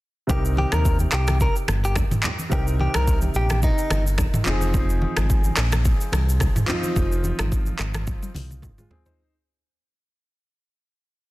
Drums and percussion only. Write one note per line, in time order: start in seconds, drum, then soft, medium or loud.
0.30 kick loud
0.30 low conga medium
0.30 shaker medium
0.45 shaker medium
0.57 high conga medium
0.72 finger snap medium
0.72 cross-stick loud
0.72 high conga medium
0.72 shaker soft
0.85 kick loud
0.85 shaker medium
0.99 high conga medium
0.99 shaker soft
1.12 finger snap medium
1.12 cross-stick medium
1.12 clap medium
1.12 shaker soft
1.27 finger snap medium
1.27 cross-stick medium
1.27 high conga medium
1.27 shaker medium
1.40 kick loud
1.40 shaker medium
1.56 shaker medium
1.68 finger snap medium
1.68 cross-stick loud
1.68 high conga medium
1.68 shaker medium
1.85 shaker medium
1.96 finger snap medium
1.96 kick medium
1.96 cross-stick medium
1.96 low conga medium
1.96 shaker medium
2.11 mid tom loud
2.11 high conga medium
2.11 shaker medium
2.23 clap loud
2.23 low conga medium
2.23 shaker medium
2.39 high conga medium
2.39 shaker medium
2.52 kick loud
2.52 low conga medium
2.52 shaker medium
2.67 shaker medium
2.79 high conga medium
2.94 finger snap medium
2.94 cross-stick loud
2.94 high conga medium
2.94 shaker soft
3.08 kick loud
3.08 shaker medium
3.21 high conga medium
3.21 shaker soft
3.34 shaker soft
3.50 finger snap medium
3.50 cross-stick medium
3.50 high conga medium
3.50 shaker medium
3.63 kick loud
3.63 shaker medium
3.78 shaker medium
3.90 finger snap medium
3.90 cross-stick loud
3.90 high conga medium
3.90 shaker medium
4.07 shaker medium
4.18 finger snap medium
4.18 kick medium
4.18 cross-stick medium
4.18 low conga medium
4.18 shaker medium
4.34 mid tom loud
4.34 high conga medium
4.34 shaker medium
4.45 clap loud
4.45 low conga medium
4.45 shaker medium
4.61 high conga medium
4.61 shaker medium
4.74 kick loud
4.74 low conga medium
4.74 shaker medium
4.90 shaker medium
5.02 high conga medium
5.17 finger snap medium
5.17 cross-stick loud
5.17 high conga medium
5.17 shaker soft
5.30 kick loud
5.30 shaker medium
5.44 high conga medium
5.44 shaker soft
5.57 finger snap medium
5.57 cross-stick medium
5.57 clap medium
5.57 shaker soft
5.72 finger snap medium
5.72 cross-stick medium
5.72 high conga medium
5.72 shaker medium
5.85 kick loud
5.85 shaker medium
6.01 shaker medium
6.12 finger snap medium
6.12 cross-stick loud
6.12 high conga medium
6.12 shaker medium
6.29 shaker medium
6.40 finger snap medium
6.40 kick medium
6.40 cross-stick medium
6.40 low conga medium
6.40 shaker medium
6.56 mid tom loud
6.56 high conga medium
6.56 shaker medium
6.68 clap loud
6.68 low conga medium
6.68 shaker medium
6.83 high conga medium
6.83 shaker medium
6.96 kick loud
6.96 low conga medium
6.96 shaker medium
7.12 shaker medium
7.24 high conga medium
7.24 shaker medium
7.39 finger snap medium
7.39 cross-stick loud
7.39 high conga medium
7.39 shaker soft
7.52 kick loud
7.52 shaker medium
7.66 high conga medium
7.66 shaker soft
7.79 finger snap medium
7.79 cross-stick medium
7.79 clap medium
7.79 shaker soft
7.94 finger snap medium
7.94 cross-stick medium
7.94 high conga medium
7.94 shaker medium
8.07 kick loud
8.07 high tom medium
8.07 shaker medium
8.23 high tom medium
8.23 shaker medium
8.34 open hi-hat medium
8.34 mid tom medium
8.34 high conga medium
8.34 shaker medium
8.51 mid tom medium
8.51 shaker medium
8.62 kick medium
8.62 mid tom medium
8.62 low conga medium
8.62 shaker medium
8.78 mid tom medium
8.78 high conga medium
8.78 shaker medium
8.91 floor tom loud
8.91 low conga medium
9.05 floor tom loud
9.05 high conga medium
9.05 shaker medium